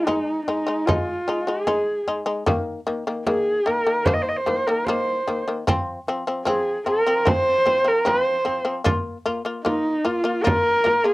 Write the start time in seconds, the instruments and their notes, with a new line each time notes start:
0.04 shamisen G#3 D#4, horsehead fiddle D#4, frame drum
0.46 shamisen G#3 D#4, horsehead fiddle D#4, frame drum
0.67 shamisen G#3 D#4
0.86 shamisen G#3 D#4, horsehead fiddle F4, frame drum
1.28 shamisen G#3 D#4
1.47 shamisen G#3 D#4, horsehead fiddle G#4
1.67 shamisen G#3 D#4, frame drum
2.07 shamisen G#3 D#4, frame drum
2.26 shamisen G#3 D#4
2.46 shamisen D#3 A#3, frame drum
2.87 shamisen D#3 A#3, frame drum
3.07 shamisen D#3 A#3
3.26 shamisen D#3 A#3, horsehead fiddle G#4, frame drum
3.66 shamisen D#3 A#3, horsehead fiddle A#4, frame drum
3.86 shamisen D#3 A#3
4.05 shamisen D#3 A#3, horsehead fiddle C5, frame drum
4.14 horsehead fiddle D#5
4.22 horsehead fiddle C5
4.29 horsehead fiddle D#5
4.37 horsehead fiddle C5
4.46 shamisen D#3 A#3, frame drum
4.67 shamisen D#3 A#3, horsehead fiddle A#4
4.85 shamisen D#3 A#3, horsehead fiddle C5, frame drum
5.28 shamisen D#3 A#3, frame drum
5.48 shamisen D#3 A#3
5.67 shamisen F3 C4, frame drum
6.07 shamisen F3 C4, frame drum
6.27 shamisen F3 C4
6.45 shamisen F3 C4, horsehead fiddle G#4, frame drum
6.86 shamisen F3 C4, horsehead fiddle A#4, frame drum
7.06 shamisen F3 C4
7.25 shamisen F3 C4, horsehead fiddle C5, frame drum
7.66 shamisen F3 C4, frame drum
7.84 shamisen F3 C4, horsehead fiddle A#4
8.05 shamisen F3 C4, horsehead fiddle C5, frame drum
8.45 shamisen F3 C4, frame drum
8.65 shamisen F3 C4
8.84 shamisen A#3 F4, frame drum
9.26 shamisen A#3 F4, frame drum
9.45 shamisen A#3 F4
9.64 shamisen A#3 F4, horsehead fiddle D#4, frame drum
10.05 shamisen A#3 F4, horsehead fiddle F4, frame drum
10.24 shamisen A#3 F4
10.43 shamisen A#3 F4, horsehead fiddle A#4
10.47 frame drum
10.84 shamisen A#3 F4, frame drum
11.04 shamisen A#3 F4, horsehead fiddle G#4